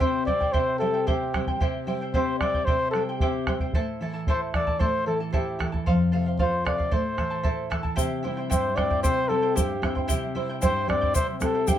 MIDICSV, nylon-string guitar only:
0, 0, Header, 1, 2, 480
1, 0, Start_track
1, 0, Tempo, 530035
1, 493, Time_signature, 2, 2, 24, 8
1, 10673, End_track
2, 0, Start_track
2, 0, Title_t, "Nylon-string guitar"
2, 0, Program_c, 0, 24
2, 0, Note_on_c, 0, 48, 62
2, 3, Note_on_c, 0, 60, 57
2, 241, Note_off_c, 0, 60, 0
2, 253, Note_on_c, 0, 55, 48
2, 465, Note_off_c, 0, 48, 0
2, 487, Note_off_c, 0, 55, 0
2, 487, Note_on_c, 0, 48, 60
2, 739, Note_on_c, 0, 55, 49
2, 971, Note_off_c, 0, 55, 0
2, 980, Note_on_c, 0, 60, 58
2, 1212, Note_off_c, 0, 60, 0
2, 1226, Note_on_c, 0, 55, 48
2, 1427, Note_off_c, 0, 48, 0
2, 1453, Note_on_c, 0, 48, 66
2, 1456, Note_off_c, 0, 55, 0
2, 1694, Note_on_c, 0, 55, 53
2, 1931, Note_off_c, 0, 55, 0
2, 1940, Note_on_c, 0, 60, 59
2, 2175, Note_off_c, 0, 60, 0
2, 2184, Note_on_c, 0, 55, 46
2, 2392, Note_off_c, 0, 48, 0
2, 2417, Note_off_c, 0, 55, 0
2, 2423, Note_on_c, 0, 48, 63
2, 2667, Note_on_c, 0, 55, 53
2, 2900, Note_off_c, 0, 55, 0
2, 2914, Note_on_c, 0, 60, 58
2, 3144, Note_off_c, 0, 60, 0
2, 3151, Note_on_c, 0, 55, 44
2, 3358, Note_off_c, 0, 48, 0
2, 3382, Note_off_c, 0, 55, 0
2, 3390, Note_on_c, 0, 45, 62
2, 3629, Note_on_c, 0, 52, 53
2, 3862, Note_off_c, 0, 52, 0
2, 3864, Note_on_c, 0, 64, 57
2, 4099, Note_off_c, 0, 64, 0
2, 4111, Note_on_c, 0, 52, 47
2, 4322, Note_off_c, 0, 45, 0
2, 4343, Note_off_c, 0, 52, 0
2, 4347, Note_on_c, 0, 45, 64
2, 4590, Note_on_c, 0, 52, 50
2, 4823, Note_off_c, 0, 52, 0
2, 4834, Note_on_c, 0, 64, 55
2, 5065, Note_off_c, 0, 64, 0
2, 5076, Note_on_c, 0, 52, 48
2, 5280, Note_off_c, 0, 45, 0
2, 5306, Note_off_c, 0, 52, 0
2, 5328, Note_on_c, 0, 41, 64
2, 5564, Note_on_c, 0, 48, 53
2, 5790, Note_off_c, 0, 48, 0
2, 5800, Note_on_c, 0, 65, 59
2, 6028, Note_off_c, 0, 65, 0
2, 6036, Note_on_c, 0, 48, 47
2, 6250, Note_off_c, 0, 41, 0
2, 6266, Note_off_c, 0, 48, 0
2, 6280, Note_on_c, 0, 45, 58
2, 6512, Note_on_c, 0, 52, 52
2, 6743, Note_off_c, 0, 52, 0
2, 6748, Note_on_c, 0, 69, 58
2, 6981, Note_off_c, 0, 69, 0
2, 6989, Note_on_c, 0, 52, 46
2, 7205, Note_off_c, 0, 45, 0
2, 7221, Note_off_c, 0, 52, 0
2, 7223, Note_on_c, 0, 48, 60
2, 7466, Note_on_c, 0, 55, 47
2, 7474, Note_on_c, 0, 60, 46
2, 7479, Note_on_c, 0, 64, 54
2, 7690, Note_off_c, 0, 48, 0
2, 7709, Note_on_c, 0, 43, 67
2, 7849, Note_off_c, 0, 55, 0
2, 7854, Note_off_c, 0, 60, 0
2, 7856, Note_off_c, 0, 64, 0
2, 7944, Note_on_c, 0, 55, 47
2, 7949, Note_on_c, 0, 60, 38
2, 7956, Note_on_c, 0, 64, 53
2, 8172, Note_off_c, 0, 43, 0
2, 8187, Note_on_c, 0, 48, 64
2, 8327, Note_off_c, 0, 55, 0
2, 8330, Note_off_c, 0, 60, 0
2, 8334, Note_off_c, 0, 64, 0
2, 8423, Note_on_c, 0, 55, 50
2, 8429, Note_on_c, 0, 60, 45
2, 8431, Note_on_c, 0, 64, 52
2, 8649, Note_off_c, 0, 48, 0
2, 8659, Note_on_c, 0, 43, 64
2, 8807, Note_off_c, 0, 55, 0
2, 8808, Note_off_c, 0, 60, 0
2, 8810, Note_off_c, 0, 64, 0
2, 8891, Note_on_c, 0, 55, 46
2, 8896, Note_on_c, 0, 60, 43
2, 8900, Note_on_c, 0, 64, 52
2, 9124, Note_off_c, 0, 43, 0
2, 9134, Note_on_c, 0, 48, 67
2, 9277, Note_off_c, 0, 55, 0
2, 9280, Note_off_c, 0, 60, 0
2, 9282, Note_off_c, 0, 64, 0
2, 9371, Note_on_c, 0, 55, 49
2, 9378, Note_on_c, 0, 60, 49
2, 9380, Note_on_c, 0, 64, 54
2, 9600, Note_off_c, 0, 48, 0
2, 9620, Note_on_c, 0, 43, 70
2, 9757, Note_off_c, 0, 55, 0
2, 9759, Note_off_c, 0, 60, 0
2, 9759, Note_off_c, 0, 64, 0
2, 9849, Note_on_c, 0, 55, 46
2, 9849, Note_on_c, 0, 60, 42
2, 9858, Note_on_c, 0, 64, 51
2, 10081, Note_off_c, 0, 43, 0
2, 10089, Note_on_c, 0, 48, 62
2, 10232, Note_off_c, 0, 60, 0
2, 10233, Note_off_c, 0, 55, 0
2, 10238, Note_off_c, 0, 64, 0
2, 10326, Note_on_c, 0, 55, 48
2, 10328, Note_on_c, 0, 60, 44
2, 10336, Note_on_c, 0, 64, 55
2, 10554, Note_off_c, 0, 48, 0
2, 10573, Note_on_c, 0, 43, 66
2, 10673, Note_off_c, 0, 43, 0
2, 10673, Note_off_c, 0, 55, 0
2, 10673, Note_off_c, 0, 60, 0
2, 10673, Note_off_c, 0, 64, 0
2, 10673, End_track
0, 0, End_of_file